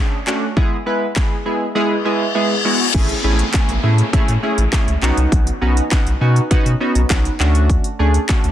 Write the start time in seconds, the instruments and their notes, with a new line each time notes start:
Already playing: synth keys A3 C#4 D4 G#4
0.27 synth keys A3 C#4 D4 F#4, clap
0.56 synth keys G#3 B3 E4 G#4, kick
0.86 synth keys G#3 B3 E4 B4
1.16 synth keys G#3 B3 E4 G#4, kick, snare, clap
1.46 synth keys G#3 B3 E4 G#4
1.75 synth keys G#3 B3 E4 G#4, reverse cymbal
2.05 synth keys G#3 B3 E4 G#4
2.35 synth keys G#3 B3 E4 G#4
2.65 synth keys G#3 B3 E4 F#4
2.94 sub bass A1, synth keys A3 C#4 E4 G#4, kick, closed hi-hat, crash, downlifter
3.09 closed hi-hat
3.24 sub bass A1, synth keys A3 C#4 E4 G#4
3.39 closed hi-hat
3.53 synth keys A3 C#4 E4 G#4, kick, snare, clap, closed hi-hat
3.69 sub bass A1, closed hi-hat
3.83 sub bass A2, synth keys A3 C#4 E4 G#4
3.98 closed hi-hat
4.13 sub bass A2, synth keys A3 C#4 E4 G#4, kick, closed hi-hat
4.28 sub bass A2, closed hi-hat
4.43 synth keys A3 C#4 E4 G#4
4.58 sub bass A1, closed hi-hat
4.73 synth keys A3 C#4 E4 G#4, kick, snare, clap, closed hi-hat
4.87 sub bass C#2, closed hi-hat
5.02 sub bass B1, synth keys B3 C#4 D#4 F#4, clap
5.17 sub bass C2, closed hi-hat
5.32 sub bass B1, kick, closed hi-hat
5.47 closed hi-hat
5.61 sub bass B1, synth keys B3 C#4 D#4 F#4
5.77 closed hi-hat
5.91 synth keys B3 C#4 D#4 F#4, kick, snare, clap, closed hi-hat
6.06 sub bass B1, closed hi-hat
6.21 sub bass B2, synth keys B3 C#4 D#4 F#4
6.36 closed hi-hat
6.51 sub bass B2, synth keys B3 C#4 D#4 F#4, kick, closed hi-hat
6.66 sub bass B2, closed hi-hat
6.80 synth keys B3 C#4 D#4 F#4
6.95 sub bass B1, closed hi-hat
7.10 sub bass B1, synth keys B3 C#4 D#4 F#4, kick, snare, clap, closed hi-hat
7.25 closed hi-hat
7.40 sub bass D2, synth keys A3 C#4 D4 F#4, clap
7.55 closed hi-hat
7.70 kick, closed hi-hat
7.84 closed hi-hat
7.99 sub bass D2, synth keys A3 C#4 D4 G#4
8.14 closed hi-hat
8.29 synth keys A3 C#4 D4 F#4, kick, snare, clap, closed hi-hat
8.44 sub bass D2, closed hi-hat